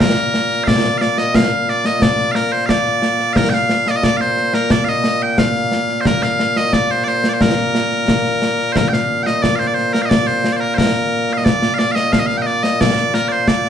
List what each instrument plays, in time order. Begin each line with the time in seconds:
Already playing: bagpipes A#2 A#3
0.00 bagpipes A#4, concert bass drum, snare
0.17 snare
0.34 snare
0.51 snare
0.64 bagpipes D5 F5, concert bass drum, snare
0.84 snare
0.98 bagpipes D5 F5, snare
1.18 bagpipes D#5, snare
1.34 bagpipes F5, concert bass drum, snare
1.52 snare
1.68 bagpipes D5, snare
1.85 bagpipes D#5, snare
2.02 bagpipes D5, concert bass drum, snare
2.19 snare
2.32 bagpipes A#4 F5, snare
2.52 bagpipes C5
2.66 bagpipes D5 F5, concert bass drum, snare
2.86 snare
3.02 snare
3.19 snare
3.33 bagpipes A#4 F5, concert bass drum, snare
3.50 bagpipes G5, snare
3.54 bagpipes F5
3.69 snare
3.87 bagpipes D5 D#5, snare
3.96 bagpipes D#5
4.03 bagpipes D5, concert bass drum, snare
4.17 bagpipes C5 F5, snare
4.37 snare
4.54 bagpipes A#4, snare
4.70 bagpipes D5, concert bass drum, snare
4.84 bagpipes F5, snare
4.89 bagpipes D#5
5.04 snare
5.22 bagpipes G5
5.38 bagpipes F5, concert bass drum, snare
5.55 snare
5.72 snare
5.89 snare
6.01 bagpipes C5
6.05 bagpipes A#4, concert bass drum, snare
6.22 bagpipes F5, snare
6.39 snare
6.56 bagpipes D#5, snare
6.73 bagpipes D5, concert bass drum, snare
6.91 bagpipes C5
7.04 bagpipes D5, snare
7.08 bagpipes C5
7.24 snare
7.29 bagpipes D5
7.33 bagpipes C5
7.41 bagpipes A#4, concert bass drum, snare
7.58 snare
7.75 snare
7.92 snare
8.08 concert bass drum, snare
8.25 snare
8.42 snare
8.59 snare
8.73 bagpipes C5, concert bass drum, snare
8.77 bagpipes A#4
8.89 bagpipes G5
8.93 bagpipes F5, snare
9.23 bagpipes D#5 G5, snare
9.42 bagpipes D5, concert bass drum, snare
9.56 bagpipes C5 F5
9.61 snare
9.67 bagpipes D5
9.74 bagpipes C5, snare
9.93 bagpipes A#4, snare
10.02 bagpipes D#5 F5
10.09 bagpipes D5, concert bass drum, snare
10.27 bagpipes C5, snare
10.44 snare
10.52 bagpipes C5 D5
10.61 bagpipes A#4
10.75 bagpipes A#4 C5, concert bass drum, snare
10.95 snare
11.29 snare
11.33 bagpipes F5
11.37 bagpipes D#5
11.45 bagpipes D5, concert bass drum, snare
11.62 snare
11.74 bagpipes F5
11.79 bagpipes D5, snare
11.92 bagpipes D#5 F5
11.96 snare
12.12 bagpipes F5, concert bass drum, snare
12.19 bagpipes D#5
12.26 bagpipes F5, snare
12.37 bagpipes G5
12.42 bagpipes D#5
12.47 bagpipes D5, snare
12.63 bagpipes D#5, snare
12.81 bagpipes D5, concert bass drum, snare
12.97 snare
13.14 bagpipes A#4, snare
13.29 bagpipes C5 D5
13.48 bagpipes D5, concert bass drum, snare
13.64 snare